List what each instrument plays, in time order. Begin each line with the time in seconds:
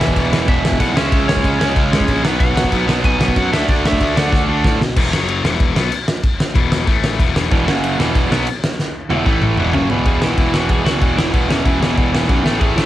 Already playing: distorted electric guitar E2 B2 E3, lead electric guitar E5
0.00 picked electric bass E1, snare
0.08 kick
0.16 picked electric bass E1, kick, crash
0.31 picked electric bass E1, distorted electric guitar E2 B2 E3, snare
0.48 picked electric bass E1, overdriven electric guitar E2 B2 E3, lead electric guitar E5, kick, crash
0.64 picked electric bass E1, snare
0.72 kick
0.79 picked electric bass B1, distorted electric guitar E2 B2 E3, lead electric guitar F#5, kick, crash
0.94 picked electric bass C#2, distorted electric guitar C#3 G#3 C#4, lead electric guitar E5, snare
1.12 picked electric bass C#2, kick, crash
1.28 picked electric bass C#2, lead electric guitar C#5, snare
1.36 kick
1.43 picked electric bass C#2, distorted electric guitar C#3 G#3 C#4, kick, crash
1.59 picked electric bass C#2, overdriven electric guitar C#3 G#3 C#4, snare
1.76 picked electric bass C#2, kick, crash
1.92 picked electric bass C#2, distorted electric guitar C#3 G#3 C#4, snare
2.00 kick
2.08 picked electric bass A#1, kick, crash
2.23 picked electric bass B1, distorted electric guitar B2 F#3 B3, snare
2.40 picked electric bass B1, lead electric guitar F#5, kick, crash
2.55 picked electric bass B1, snare
2.64 kick
2.71 picked electric bass B1, distorted electric guitar B2 F#3 B3, kick, crash
2.87 picked electric bass B1, overdriven electric guitar B2 F#3 B3, snare
3.04 picked electric bass B1, lead electric guitar G#5, kick, crash
3.19 picked electric bass B1, distorted electric guitar B2 F#3 B3, snare
3.28 kick
3.36 picked electric bass F#2, lead electric guitar F#5, kick, crash
3.51 picked electric bass D2, distorted electric guitar D3 A3 D4, lead electric guitar E5, snare
3.69 picked electric bass D2, lead electric guitar D5, kick, crash
3.85 picked electric bass D2, lead electric guitar E5, snare
3.93 kick
4.00 picked electric bass D2, distorted electric guitar D3 A3 D4, kick, crash
4.16 picked electric bass D2, overdriven electric guitar D3 A3 D4, lead electric guitar F#5, snare
4.32 picked electric bass D2, kick, snare
4.48 picked electric bass D2, distorted electric guitar D3 A3 D4
4.64 picked electric bass A2, kick, snare
4.81 picked electric bass B2, snare
4.96 picked electric bass E1, distorted electric guitar E2 B2 E3, kick, crash
5.12 picked electric bass F#1, distorted electric guitar F#2 C#3 F#3, snare
5.29 crash
5.44 picked electric bass E1, distorted electric guitar E2 B2 E3, snare
5.60 kick, crash
5.75 picked electric bass B1, distorted electric guitar B2 F#3 B3, snare
5.92 crash
6.08 snare
6.23 kick, crash
6.40 snare
6.54 picked electric bass E1, distorted electric guitar E2 B2 E3, kick, crash
6.72 snare
6.87 picked electric bass A1, distorted electric guitar A2 E3 A3, kick, crash
7.04 snare
7.19 picked electric bass E1, distorted electric guitar E2 B2 E3, kick, crash
7.36 snare
7.51 picked electric bass E1, distorted electric guitar E2 B2 E3, kick, crash
7.67 picked electric bass F#1, distorted electric guitar F#2 C#3 F#3, snare
7.84 crash
7.99 picked electric bass E1, distorted electric guitar E2 B2 E3, snare
8.15 kick, crash
8.31 picked electric bass B1, distorted electric guitar B2 F#3 B3, snare
8.47 crash
8.64 snare
8.79 snare
9.10 picked electric bass E1, distorted electric guitar E2 B2 E3, high tom
9.26 picked electric bass A1, distorted electric guitar A2 E3 A3, kick
9.42 mid tom
9.58 picked electric bass E1, distorted electric guitar E2 B2 E3, mid tom
9.73 picked electric bass F#1, distorted electric guitar F#2 C#3 F#3, lead electric guitar C#4, floor tom
9.90 picked electric bass E1, distorted electric guitar E2 B2 E3, lead electric guitar B3, floor tom
10.05 picked electric bass E1, distorted electric guitar E2 B2 E3, lead electric guitar G#4, kick, crash
10.21 picked electric bass E1, distorted electric guitar E2 B2 E3, lead electric guitar E4, snare
10.38 picked electric bass E1, distorted electric guitar E2 B2 E3, kick, crash
10.54 picked electric bass E1, distorted electric guitar E2 B2 E3, lead electric guitar F#4, snare
10.69 picked electric bass E1, distorted electric guitar E2 B2 E3, lead electric guitar G#4, kick, crash
10.86 picked electric bass C#2, distorted electric guitar E2 B2 E3, lead electric guitar F#4, snare
11.01 picked electric bass E1, distorted electric guitar E2 B2 E3, kick, crash
11.17 picked electric bass E1, distorted electric guitar E2 B2 E3, lead electric guitar E4, snare
11.33 picked electric bass E1, distorted electric guitar E2 B2 E3, kick, crash
11.49 picked electric bass E1, distorted electric guitar E2 B2 E3, lead electric guitar C#4, snare
11.65 picked electric bass E1, distorted electric guitar E2 B2 E3, kick, crash
11.80 picked electric bass E1, distorted electric guitar E2 B2 E3, lead electric guitar B3, snare
11.96 picked electric bass E1, distorted electric guitar E2 B2 E3, kick, crash
12.12 picked electric bass E1, distorted electric guitar E2 B2 E3, snare
12.28 picked electric bass B1, distorted electric guitar E2 B2 E3, lead electric guitar C#4, kick, crash
12.43 picked electric bass A1, distorted electric guitar A2 E3 A3, lead electric guitar B3, snare
12.60 picked electric bass A1, distorted electric guitar A2 E3 A3, lead electric guitar G#4, kick, crash
12.76 picked electric bass A1, distorted electric guitar A2 E3 A3, lead electric guitar E4, snare